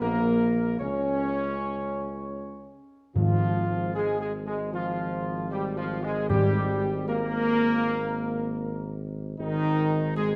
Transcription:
0.00 0.76 A#1 medium
0.00 0.76 A#3 medium
0.00 0.76 A#4 medium
0.79 2.72 C#2 medium
0.79 2.73 C#4 loud
0.79 2.73 C#4 medium
0.79 2.72 C#5 medium
3.15 9.35 G#1 medium
3.15 4.30 G#2 loud
3.15 3.90 F3 medium
3.15 3.91 F3 medium
3.15 3.91 F4 medium
3.94 4.19 G#3 loud
3.94 4.18 G#3 medium
3.94 4.19 G#4 medium
4.19 4.31 G#3 medium
4.19 4.32 G#3 medium
4.19 4.33 G#4 medium
4.45 4.57 G#3 medium
4.45 4.71 G#3 medium
4.45 4.59 G#4 medium
4.71 5.46 F3 medium
4.71 5.47 F3 medium
4.71 5.47 F4 medium
5.50 5.75 G3 medium
5.50 5.63 G4 medium
5.76 6.01 F3 medium
5.76 6.02 F3 medium
5.76 6.02 F4 medium
6.02 6.27 G#3 medium
6.02 6.28 G#3 loud
6.02 6.30 G#4 medium
6.29 7.43 G#2 medium
6.29 7.04 G3 loud
6.29 7.04 G3 medium
6.29 7.04 G4 medium
7.07 8.97 A#3 medium
7.07 8.97 A#3 loud
7.07 8.97 A#4 medium
9.39 10.36 G#1 medium
9.39 10.13 D#3 loud
9.39 10.13 D#4 loud
10.16 10.28 G#3 loud
10.16 10.36 G#3 medium
10.16 10.36 G#4 medium

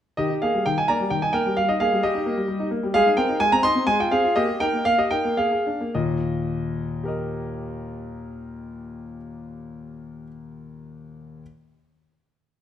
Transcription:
0.17 0.30 D#3 medium
0.17 0.41 G4 medium
0.17 0.32 D#5 medium
0.30 0.43 D#4 soft
0.42 0.55 A#3 soft
0.42 0.65 G#4 medium
0.42 0.66 F5 medium
0.54 0.67 G3 soft
0.66 0.78 D#3 medium
0.66 0.78 G5 medium
0.78 0.90 D#4 soft
0.78 0.89 G#5 medium
0.88 1.01 A#3 soft
0.88 1.10 D5 medium
0.88 1.09 A#5 medium
1.00 1.12 G3 soft
1.10 1.22 D#3 medium
1.10 1.22 G5 medium
1.22 1.35 D#4 soft
1.22 1.34 G#5 medium
1.33 1.46 A#3 soft
1.33 1.55 A#4 medium
1.33 1.54 G5 medium
1.46 1.56 G3 medium
1.57 1.68 G3 medium
1.57 1.69 F5 medium
1.69 1.81 D#4 soft
1.69 1.80 D#5 medium
1.80 1.92 A#3 soft
1.80 2.02 G#4 medium
1.80 2.01 F5 loud
1.92 2.02 G3 medium
2.03 2.14 G3 medium
2.03 2.67 G4 medium
2.03 2.67 D#5 medium
2.15 2.26 D#4 soft
2.26 2.38 A#3 medium
2.37 2.47 G3 medium
2.48 2.59 G3 medium
2.60 2.72 D#4 medium
2.71 2.83 A#3 medium
2.83 2.94 G3 medium
2.94 3.05 G#3 medium
2.94 3.16 G#4 medium
2.94 3.08 F5 loud
3.06 3.18 D#4 soft
3.17 3.29 C4 medium
3.17 3.39 A#4 medium
3.17 3.38 G5 medium
3.29 3.41 D#4 medium
3.40 3.51 G#3 medium
3.40 3.51 G#5 loud
3.52 3.64 C4 medium
3.52 3.63 A#5 loud
3.63 3.75 D#4 medium
3.63 3.86 D#5 medium
3.63 3.84 C6 loud
3.75 3.87 C4 medium
3.87 3.98 G#3 medium
3.87 3.98 G#5 loud
4.00 4.12 F4 medium
4.00 4.11 G5 medium
4.11 4.24 C4 medium
4.11 4.34 G#4 medium
4.11 4.35 F5 medium
4.24 4.35 F4 medium
4.36 4.47 A#3 medium
4.36 4.47 G4 medium
4.36 4.60 D#5 loud
4.48 4.61 G4 soft
4.60 4.73 D#4 medium
4.60 4.84 A#4 medium
4.60 4.85 G5 loud
4.73 4.84 A#3 soft
4.85 4.98 A#3 medium
4.85 4.98 F5 loud
4.98 5.12 G4 soft
4.98 5.11 D#5 medium
5.11 5.25 D#4 medium
5.11 5.36 A#4 medium
5.11 5.38 G5 loud
5.25 5.36 A#3 medium
5.37 5.51 A#3 medium
5.37 5.50 G#4 medium
5.37 5.89 F5 medium
5.52 5.67 G#4 soft
5.66 5.81 D4 soft
5.81 5.94 A#3 soft
5.95 9.15 D#2 medium
5.95 9.15 A#2 medium
5.95 7.07 D#5 medium
7.03 10.24 G4 soft
7.03 10.26 A#4 soft
7.08 10.28 D#5 soft

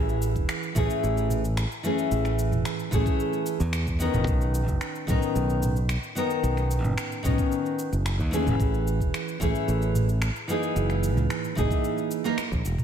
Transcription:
0.00 0.36 A1 medium
0.00 0.72 E3 medium
0.00 0.72 A3 medium
0.00 0.73 C#4 medium
0.00 0.73 G#4 medium
0.09 shaker soft
0.22 shaker medium
0.36 0.45 E1 medium
0.36 kick medium
0.36 shaker soft
0.49 finger snap loud
0.49 shaker soft
0.63 shaker soft
0.75 0.85 A1 medium
0.75 1.40 E3 medium
0.75 1.41 A3 medium
0.75 1.41 C#4 medium
0.75 1.42 G#4 medium
0.75 kick loud
0.75 mid tom medium
0.75 shaker medium
0.90 shaker soft
1.04 1.64 A1 medium
1.04 shaker soft
1.17 shaker soft
1.30 mid tom medium
1.30 shaker medium
1.45 shaker soft
1.57 finger snap loud
1.57 shaker soft
1.72 shaker soft
1.83 2.89 E3 medium
1.83 2.89 A3 medium
1.83 2.90 C#4 medium
1.83 2.90 G#4 medium
1.83 shaker medium
1.99 shaker soft
2.11 2.52 A1 loud
2.11 shaker soft
2.25 finger snap soft
2.25 shaker soft
2.39 shaker medium
2.52 2.61 E1 medium
2.52 mid tom medium
2.52 shaker soft
2.65 finger snap medium
2.65 shaker soft
2.80 shaker soft
2.91 3.02 A1 medium
2.91 3.57 E3 medium
2.91 3.57 A3 medium
2.91 3.58 C#4 medium
2.91 3.58 G#4 medium
2.91 kick loud
2.91 mid tom medium
2.91 shaker medium
3.06 kick loud
3.06 shaker soft
3.20 shaker soft
3.33 shaker soft
3.46 shaker medium
3.60 4.07 E2 loud
3.60 shaker soft
3.73 finger snap loud
3.73 shaker soft
3.87 kick medium
3.87 shaker soft
3.99 5.04 D#3 medium
3.99 5.05 B3 medium
3.99 5.05 C#4 medium
3.99 5.06 A#4 medium
3.99 shaker medium
4.14 4.23 E1 loud
4.14 mid tom medium
4.14 shaker soft
4.27 4.68 B1 loud
4.27 kick loud
4.27 shaker soft
4.41 shaker soft
4.55 shaker medium
4.68 4.77 F#1 medium
4.68 kick medium
4.68 shaker soft
4.81 finger snap medium
4.81 shaker soft
4.95 shaker soft
5.07 5.18 B1 medium
5.07 5.73 D#3 medium
5.07 5.73 B3 medium
5.07 5.74 C#4 medium
5.07 5.74 A#4 medium
5.07 kick loud
5.07 mid tom medium
5.07 shaker medium
5.22 shaker soft
5.35 5.96 B1 medium
5.35 shaker soft
5.50 shaker soft
5.62 mid tom medium
5.62 shaker medium
5.76 shaker soft
5.89 finger snap loud
5.89 shaker soft
6.03 shaker soft
6.15 7.21 D#3 medium
6.15 7.21 B3 medium
6.15 7.22 C#4 medium
6.15 7.22 A#4 medium
6.15 shaker medium
6.30 shaker soft
6.43 6.84 B1 medium
6.43 shaker soft
6.57 finger snap soft
6.57 shaker soft
6.71 shaker medium
6.84 6.93 F#1 medium
6.84 mid tom medium
6.84 shaker soft
6.98 finger snap medium
6.98 shaker soft
7.12 shaker soft
7.23 7.34 B1 medium
7.23 7.89 D#3 medium
7.23 7.89 B3 medium
7.23 7.90 C#4 medium
7.23 7.90 A#4 medium
7.23 kick loud
7.23 mid tom medium
7.23 shaker medium
7.38 kick loud
7.38 shaker soft
7.52 shaker soft
7.66 shaker soft
7.79 shaker medium
7.92 8.19 F#1 medium
7.92 shaker soft
8.06 finger snap loud
8.06 shaker soft
8.19 8.48 D#2 loud
8.19 kick medium
8.19 shaker soft
8.31 9.37 E3 medium
8.31 9.37 A3 medium
8.31 9.38 C#4 medium
8.31 9.38 G#4 medium
8.31 shaker medium
8.47 8.56 F#1 loud
8.47 mid tom medium
8.47 shaker soft
8.60 9.00 A1 medium
8.60 kick loud
8.60 shaker soft
8.74 shaker soft
8.87 shaker medium
9.00 9.10 E1 medium
9.00 kick medium
9.00 shaker soft
9.14 finger snap medium
9.14 shaker soft
9.28 shaker soft
9.40 9.50 A1 medium
9.40 10.05 E3 medium
9.40 10.06 A3 medium
9.40 10.06 C#4 medium
9.40 10.07 G#4 medium
9.40 kick loud
9.40 mid tom medium
9.40 shaker medium
9.55 shaker soft
9.68 10.29 A1 medium
9.68 shaker soft
9.82 shaker soft
9.95 mid tom medium
9.95 shaker medium
10.09 shaker soft
10.22 finger snap loud
10.22 shaker soft
10.36 shaker soft
10.48 11.53 E3 medium
10.48 11.54 A#3 medium
10.48 11.54 D#4 medium
10.48 11.55 G#4 medium
10.48 shaker medium
10.63 shaker soft
10.76 11.17 F#1 loud
10.76 shaker soft
10.90 finger snap soft
10.90 shaker soft
11.03 shaker medium
11.17 11.26 C#2 medium
11.17 mid tom medium
11.17 shaker soft
11.30 finger snap loud
11.30 shaker soft
11.44 shaker soft
11.55 11.66 F#1 medium
11.55 12.21 E3 medium
11.55 12.22 A#3 medium
11.55 12.22 D#4 medium
11.55 12.23 G#4 medium
11.55 kick loud
11.55 mid tom medium
11.55 shaker medium
11.71 kick loud
11.71 shaker soft
11.84 shaker soft
11.98 shaker soft
12.11 shaker medium
12.24 12.35 E3 medium
12.24 12.35 A#3 medium
12.24 12.35 D#4 medium
12.24 12.36 A#4 loud
12.24 shaker soft
12.38 finger snap loud
12.38 shaker soft
12.52 12.61 A#1 medium
12.52 kick medium
12.52 shaker soft
12.65 12.75 E1 loud
12.65 shaker medium
12.78 mid tom medium
12.78 shaker soft

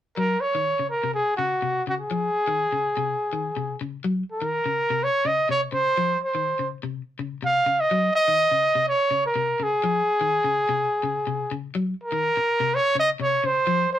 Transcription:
0.17 0.35 F#3 medium
0.17 0.42 A#4 medium
0.41 0.90 C#5 medium
0.55 0.73 D#3 medium
0.79 0.97 C#3 medium
0.90 1.13 A#4 medium
1.04 1.21 C3 medium
1.14 1.37 G#4 medium
1.37 1.56 C#3 medium
1.37 1.83 F#4 medium
1.62 1.80 C3 medium
1.87 2.05 C#3 medium
1.87 1.94 F#4 medium
2.01 3.77 G#4 medium
2.11 2.29 F3 medium
2.48 2.66 D#3 medium
2.72 2.90 C#3 medium
2.97 3.15 C3 medium
3.33 3.50 D#3 medium
3.56 3.74 C3 medium
3.81 3.99 C#3 medium
4.04 4.22 F#3 medium
4.32 5.05 A#4 medium
4.42 4.60 D#3 medium
4.66 4.84 C#3 medium
4.90 5.08 C3 medium
5.04 5.28 C#5 loud
5.25 5.43 C#3 medium
5.25 5.50 D#5 medium
5.49 5.67 C3 medium
5.49 5.61 C#5 medium
5.72 5.91 C#3 medium
5.72 6.19 C5 loud
5.97 6.15 F3 medium
6.25 6.68 C5 medium
6.35 6.53 D#3 medium
6.59 6.77 C#3 medium
6.83 7.01 C3 medium
7.19 7.37 C#3 medium
7.42 7.60 C3 medium
7.42 7.82 F5 loud
7.66 7.84 C#3 medium
7.80 8.15 D#5 medium
7.91 8.09 F#3 medium
8.15 8.84 D#5 loud
8.28 8.46 D#3 medium
8.52 8.69 C#3 medium
8.75 8.93 C3 medium
8.88 9.22 C#5 medium
9.11 9.29 C#3 medium
9.27 9.64 A#4 medium
9.36 9.53 C3 medium
9.60 9.77 C#3 medium
9.60 11.54 G#4 medium
9.84 10.01 F3 medium
10.21 10.38 D#3 medium
10.44 10.62 C#3 medium
10.69 10.87 C3 medium
11.03 11.21 C#3 medium
11.27 11.45 C3 medium
11.51 11.69 C#3 medium
11.75 11.93 F#3 medium
12.04 12.77 A#4 medium
12.12 12.30 D#3 medium
12.37 muted clean electric guitar stroke medium
12.60 12.78 C3 medium
12.75 12.98 C#5 loud
12.95 13.13 C#3 medium
13.00 13.10 D#5 loud
13.20 13.38 C3 medium
13.20 13.48 C#5 medium
13.44 13.62 C#3 medium
13.44 13.93 C5 loud
13.67 13.85 F3 medium
13.93 13.99 C5 medium

